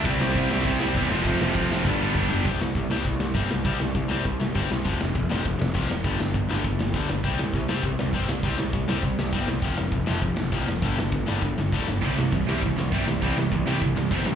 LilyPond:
<<
  \new Staff \with { instrumentName = "Distorted electric guitar" } { \clef bass \time 4/4 \key g \major \tempo 4 = 201 <c g c' e'>8 <c g c' e'>8 <c g c' e'>8 <c g c' e'>8 <c g c' e'>8 <c g c' e'>8 <c g c' e'>8 <f, c f a c'>8 | <f, c f a c'>8 <f, c f a c'>8 <f, c f a c'>8 <f, c f a c'>8 <g, d g b d'>8 <g, d g b d'>8 <g, d g b d'>8 <g, d g b d'>8 | \key c \major r1 | r1 |
r1 | r1 | r1 | r1 |
r1 | r1 | <c e g>8 <c e>8 <c e>8 <c e g>8 <c e>8 <c e>8 <c e g>8 <c e>8 | <c e g>8 <c e>8 <c e>8 <c e g>8 <c e>8 <c e>8 <c e g>8 <c e>8 | }
  \new Staff \with { instrumentName = "Distorted electric guitar" } { \clef bass \time 4/4 \key g \major <c g c'>8 <c g c'>8 <c g c'>8 <c g c'>8 <c g c'>8 <c g c'>8 <c g c'>8 <f, c f>8 | <f, c f>8 <f, c f>8 <f, c f>8 <f, c f>8 <g, d g>8 <g, d g>8 <g, d g>8 <g, d g>8 | \key c \major <c g c'>8 <c g>8 <c g>8 <c g c'>8 <c g>8 <c g>8 <c g c'>8 <c g>8 | <c g c'>8 <c g>8 <c g>8 <c g c'>8 <c g>8 <c g>8 <c g c'>8 <c g>8 |
<f, c f>8 <f, c>8 <f, c>8 <f, c f>8 <f, c>8 <f, c>8 <f, c f>8 <f, c>8 | <g, d g>8 <g, d>8 <g, d>8 <g, d g>8 <g, d>8 <g, d>8 <g, d g>8 <g, d>8 | <c g c'>8 <c g>8 <c g>8 <c g c'>8 <c g>8 <c g>8 <c g c'>8 <c g>8 | <c g c'>8 <c g>8 <c g>8 <c g c'>8 <c g>8 <c g>8 <c g c'>8 <c g>8 |
<f, c f>8 <f, c>8 <f, c>8 <f, c f>8 <f, c>8 <f, c>8 <f, c f>8 <f, c>8 | <g, d g>8 <g, d>8 <g, d>8 <g, d g>8 <g, d>8 <g, d>8 <g, d g>8 <g, d>8 | <c g c'>8 <c g>8 <c g>8 <c g c'>8 <c g>8 <c g>8 <c g c'>8 <c g>8 | <c g c'>8 <c g>8 <c g>8 <c g c'>8 <c g>8 <c g>8 <c g c'>8 <c g>8 | }
  \new Staff \with { instrumentName = "Distorted electric guitar" } { \clef bass \time 4/4 \key g \major <c g c'>2.~ <c g c'>8 <f, c f>8~ | <f, c f>2 <g, d g>2 | \key c \major r1 | r1 |
r1 | r1 | r1 | r1 |
r1 | r1 | r1 | r1 | }
  \new Staff \with { instrumentName = "Picked electric bass" } { \clef bass \time 4/4 \key g \major c,8 c,8 c,8 c,8 c,4 e,8 f,,8 | f,,8 f,,8 f,,8 f,,8 g,,4 g,,8 g,,8 | \key c \major c,8 c,8 c,8 c,8 c,8 c,8 g,,8 c,8 | c,8 c,8 c,8 c,8 c,8 c,8 g,,8 c,8 |
f,,8 f,,8 f,,8 f,,8 f,,8 f,,8 c,8 f,,8 | g,,8 g,,8 g,,8 g,,8 g,,8 g,,8 d,8 g,,8 | c,8 c,8 c,8 c,8 c,8 c,8 g,,8 c,8 | c,8 c,8 c,8 c,8 c,8 c,8 g,,8 c,8 |
f,,8 f,,8 f,,8 f,,8 f,,8 f,,8 c,8 f,,8 | g,,8 g,,8 g,,8 g,,8 g,,8 g,,8 d,8 g,,8 | c,8 c,8 c,8 c,8 c,8 c,8 g,,8 c,8 | c,8 c,8 c,8 c,8 c,8 c,8 g,,8 g,8 | }
  \new DrumStaff \with { instrumentName = "Drums" } \drummode { \time 4/4 <cymc bd>8 sn8 <cymc bd>8 sn8 <cymc bd>8 sn8 <cymc bd>8 sn8 | <cymc bd>8 sn8 <cymc bd>8 sn8 <bd sn>4 <bd toml>8 tomfh8 | <hho bd>8 sn8 <hho bd>8 sn8 <hho bd>8 sn8 <hho bd>8 sn8 | <hho bd>8 sn8 <hho bd>8 sn8 <hho bd>8 sn8 <hho bd>8 sn8 |
<hho bd>8 sn8 <hho bd>8 sn8 <hho bd>8 sn8 <hho bd>8 sn8 | <hho bd>8 sn8 <hho bd>8 sn8 <hho bd>8 sn8 <hho bd>8 sn8 | <hho bd>8 sn8 <hho bd>8 sn8 <hho bd>8 sn8 <hho bd>8 sn8 | <hho bd>8 sn8 <hho bd>8 sn8 <hho bd>8 sn8 <hho bd>8 sn8 |
<hho bd>8 sn8 <hho bd>8 sn8 <hho bd>8 sn8 <hho bd>8 sn8 | <hho bd>8 sn8 <hho bd>8 sn8 <bd sn>8 sn8 <bd sn>8 sn8 | <cymc hho bd>8 sn8 <hho bd>8 sn8 <hho bd>8 sn8 <hho bd>8 sn8 | <hho bd>8 sn8 <hho bd>8 sn8 <hho bd>8 sn8 <hho bd>8 sn8 | }
>>